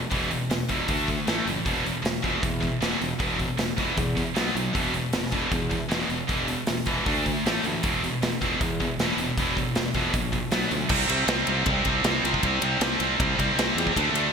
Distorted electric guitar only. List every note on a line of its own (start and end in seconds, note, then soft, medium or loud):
0.10 0.29 E2 medium
0.10 0.29 B2 medium
0.10 0.30 E3 medium
0.30 0.48 E2 medium
0.30 0.48 B2 medium
0.50 0.67 E2 medium
0.50 0.67 B2 medium
0.69 0.87 E2 medium
0.69 0.88 B2 medium
0.69 0.88 E3 medium
0.88 1.07 D3 medium
0.88 1.07 A3 medium
0.88 1.07 D4 loud
1.09 1.26 D3 medium
1.09 1.26 A3 medium
1.27 1.45 A2 medium
1.27 1.46 E3 medium
1.27 1.46 A3 loud
1.47 1.64 A2 medium
1.47 1.64 E3 medium
1.65 1.84 E2 medium
1.65 1.84 B2 medium
1.65 1.84 E3 medium
1.85 2.01 E2 medium
1.85 2.02 B2 medium
2.02 2.21 E2 medium
2.02 2.21 B2 medium
2.22 2.41 E2 medium
2.22 2.41 B2 medium
2.22 2.41 E3 medium
2.43 2.59 E2 medium
2.43 2.59 B2 medium
2.60 2.79 E2 medium
2.60 2.79 B2 medium
2.81 2.98 E2 medium
2.81 2.99 B2 medium
2.81 3.00 E3 loud
2.99 3.17 E2 medium
2.99 3.18 B2 medium
3.19 3.37 E2 medium
3.19 3.38 B2 medium
3.19 3.38 E3 medium
3.39 3.56 E2 medium
3.39 3.57 B2 medium
3.58 3.76 E2 medium
3.58 3.76 B2 medium
3.77 3.96 E2 medium
3.77 3.96 B2 medium
3.77 3.97 E3 medium
3.98 4.15 E2 medium
3.98 4.15 B2 medium
4.17 4.34 E2 medium
4.17 4.34 B2 medium
4.35 4.54 B2 medium
4.35 4.54 F#3 medium
4.35 4.55 B3 loud
4.55 4.72 B2 medium
4.55 4.73 F#3 medium
4.73 4.92 E2 medium
4.73 4.92 B2 medium
4.73 4.93 E3 medium
4.94 5.11 E2 medium
4.94 5.11 B2 medium
5.13 5.30 E2 medium
5.13 5.31 B2 medium
5.31 5.50 E2 medium
5.31 5.51 B2 medium
5.31 5.51 E3 medium
5.52 5.68 E2 medium
5.52 5.69 B2 medium
5.70 5.88 E2 medium
5.70 5.88 B2 medium
5.89 6.08 E2 medium
5.89 6.08 B2 loud
5.89 6.08 E3 loud
6.10 6.27 E2 medium
6.10 6.27 B2 medium
6.28 6.47 E2 medium
6.28 6.47 B2 medium
6.28 6.47 E3 medium
6.49 6.66 E2 medium
6.49 6.66 B2 medium
6.68 6.85 E2 medium
6.68 6.85 B2 medium
6.86 7.05 E2 medium
6.86 7.05 B2 medium
6.86 7.06 E3 medium
7.05 7.24 D3 medium
7.05 7.24 A3 medium
7.05 7.25 D4 loud
7.25 7.43 D3 medium
7.25 7.43 A3 medium
7.45 7.63 A2 medium
7.45 7.63 E3 loud
7.45 7.64 A3 loud
7.66 7.82 A2 medium
7.66 7.83 E3 medium
7.83 8.01 E2 medium
7.83 8.01 B2 medium
7.83 8.02 E3 loud
8.04 8.21 E2 medium
8.04 8.21 B2 medium
8.22 8.39 E2 medium
8.22 8.39 B2 medium
8.41 8.59 E2 medium
8.41 8.59 B2 medium
8.41 8.60 E3 medium
8.62 8.78 E2 medium
8.62 8.78 B2 medium
8.80 8.97 E2 medium
8.80 8.98 B2 medium
9.00 9.17 E2 loud
9.00 9.17 B2 loud
9.00 9.18 E3 loud
9.20 9.36 E2 medium
9.20 9.36 B2 medium
9.38 9.55 E2 medium
9.38 9.55 B2 medium
9.38 9.56 E3 medium
9.56 9.73 E2 medium
9.56 9.73 B2 medium
9.76 9.93 E2 medium
9.76 9.93 B2 medium
9.95 10.12 E2 medium
9.95 10.12 B2 medium
9.95 10.13 E3 medium
10.13 10.31 E2 medium
10.13 10.31 B2 medium
10.32 10.50 E2 medium
10.32 10.50 B2 medium
10.52 10.70 B2 medium
10.52 10.70 F#3 loud
10.52 10.70 B3 loud
10.71 10.88 B2 medium
10.71 10.89 F#3 medium
10.89 11.08 C3 medium
10.89 11.10 G3 loud
10.89 11.10 C4 loud
11.09 11.27 C3 medium
11.09 11.28 G3 loud
11.09 11.29 C4 loud
11.28 11.48 C3 loud
11.28 11.48 G3 loud
11.28 11.49 C4 loud
11.48 11.65 C3 medium
11.48 11.66 G3 medium
11.48 11.66 C4 medium
11.66 11.85 C3 loud
11.66 11.86 G3 loud
11.66 11.87 C4 loud
11.87 12.04 C3 medium
11.87 12.04 G3 loud
11.87 12.05 C4 medium
12.05 12.23 C3 medium
12.05 12.24 G3 loud
12.05 12.25 C4 loud
12.24 12.43 C3 medium
12.24 12.44 G3 medium
12.24 12.45 C4 loud
12.44 12.62 C3 medium
12.44 12.62 G3 loud
12.44 12.63 C4 loud
12.63 12.80 C3 loud
12.63 12.80 G3 medium
12.63 12.81 C4 loud
12.81 12.99 C3 loud
12.81 13.00 G3 loud
12.81 13.01 C4 loud
13.00 13.18 C3 medium
13.00 13.19 G3 medium
13.00 13.20 C4 loud
13.19 13.38 C3 loud
13.19 13.38 G3 loud
13.19 13.39 C4 loud
13.39 13.57 C3 medium
13.39 13.58 G3 loud
13.39 13.59 C4 loud
13.59 13.77 C3 loud
13.59 13.78 G3 loud
13.59 13.78 C4 loud
13.78 13.95 C3 medium
13.78 13.95 G3 medium
13.78 13.96 C4 loud
13.97 14.14 D3 loud
13.97 14.15 A3 loud
13.97 14.16 D4 loud
14.15 14.33 D3 loud
14.15 14.33 A3 medium
14.15 14.33 D4 medium